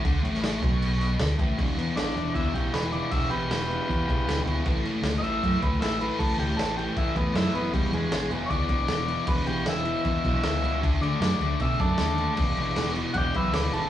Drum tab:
CC |x-x-x-x-x-x-x-x-|x-x-x-x-x-x-x-x-|x-x-x-x-x-x-x-x-|x-x-x-x-x-x-x-x-|
SD |---oo-----o-o---|----oo------o---|----oo------o---|----oo------o---|
BD |o-----o-------o-|o-------o-o-----|o-------o-o-----|o-------o-o-----|

CC |x-x-x-x-x-x-x-x-|x-x-x-x-x-x-x-x-|x-x-x-x-x-x-x-x-|x-x-x-x-x-x-x-x-|
SD |----o-------o---|----o-------o---|----oo------o---|----oo------o---|
BD |o-------o-o-----|o-------o-o-----|o-------o-o-----|o-------o-o-----|

CC |x-x-x-x-x-x-x-x-|
SD |----oo------o---|
BD |o-------o-o-----|